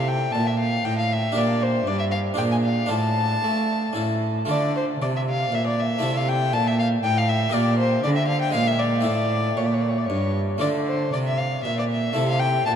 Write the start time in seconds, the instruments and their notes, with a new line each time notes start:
Already playing: harpsichord C3 A3 E4 A4, cello C3
0.08 violin G5
0.32 cello A#2, harpsichord A#2, violin A5
0.47 violin E5
0.59 violin F5
0.85 cello A2, harpsichord A2, violin G5
0.99 violin F5
1.13 violin E5
1.32 cello A#2, harpsichord D4 G4 A#4
1.36 harpsichord A#2, violin D5
1.63 violin C5
1.87 cello G2, harpsichord G2, violin D5
1.99 violin E5
2.11 violin F5
2.34 harpsichord D4 F4 G#4, violin G5
2.39 cello A#2, harpsichord A#2
2.52 violin G#5
2.65 violin F5
2.86 harpsichord D4 F4 A4, violin A5
2.91 harpsichord A2, cello A2
3.44 harpsichord A3, cello A3
3.93 cello A2, harpsichord C#4 E4 A4
3.97 harpsichord A2
4.45 harpsichord A3 F4 A4
4.50 cello D3, harpsichord D3, violin D5
4.77 violin C5
5.01 cello C3, harpsichord C3, violin D5
5.16 violin E5
5.29 violin F5
5.52 cello A#2, harpsichord A#2, violin E5
5.67 violin D5
5.80 violin E5
5.99 cello C3, harpsichord A3 E4 A4
6.03 harpsichord C3
6.17 violin F5
6.29 violin G5
6.53 cello A#2, harpsichord A#2, violin A5
6.67 violin E5
6.79 violin F5
7.04 cello A2, harpsichord A2, violin G5
7.18 violin F5
7.29 violin E5
7.49 harpsichord A#3 G4 A#4
7.54 cello A#2, harpsichord A#2, violin D5
7.79 violin C5
8.04 cello D3, harpsichord D3, violin D5
8.16 violin E5
8.28 violin F5
8.42 violin G5
8.51 harpsichord G#3 G#4 A#4, violin F5
8.55 cello A#2, harpsichord A#2
8.67 violin E5
8.79 violin D5
9.01 harpsichord A3 E4 A4
9.05 harpsichord A2, cello A2, violin D5
9.57 harpsichord A#2, cello A#2, violin C#5
9.66 violin D5
9.74 violin C#5
9.82 violin D5
9.89 violin C#5
9.98 violin D5
10.06 violin C#5
10.10 harpsichord G2, cello G2
10.58 harpsichord A3 F4 A4, violin D5
10.62 harpsichord D3, cello D3
10.87 violin C5
11.12 harpsichord C3, cello C3, violin D5
11.27 violin E5
11.38 violin F5
11.64 harpsichord A#2, cello A#2, violin E5
11.79 violin D5
11.91 violin E5
12.13 cello C3, harpsichord A3 E4 A4
12.18 harpsichord C3
12.29 violin F5
12.40 violin G5
12.66 cello A#2, harpsichord A#2, violin A5